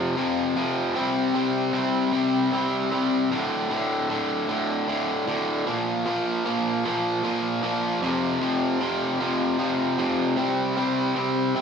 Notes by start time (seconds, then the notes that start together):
Already playing: F2 C3 F3
0.16 F2 C3 F3
0.56 F2 C3 F3
0.95 C3 G3 C4
1.34 C3 G3 C4
1.73 C3 G3 C4
2.12 C3 G3 C4
2.52 C3 G3 C4
2.91 C3 G3 C4
3.31 D2 A2 D3
3.70 D2 A2 D3
4.09 D2 A2 D3
4.48 D2 A2 D3
4.87 D2 A2 D3
5.26 D2 A2 D3
5.66 A#2 F3 A#3
6.06 A#2 F3 A#3
6.45 A#2 F3 A#3
6.85 A#2 F3 A#3
7.23 A#2 F3 A#3
7.62 A#2 F3 A#3
8.02 F2 C3 F3
8.41 F2 C3 F3
8.80 F2 C3 F3
9.20 F2 C3 F3
9.58 F2 C3 F3
9.98 F2 C3 F3
10.37 C3 G3 C4
10.77 C3 G3 C4
11.15 C3 G3 C4
11.55 C3 G3 C4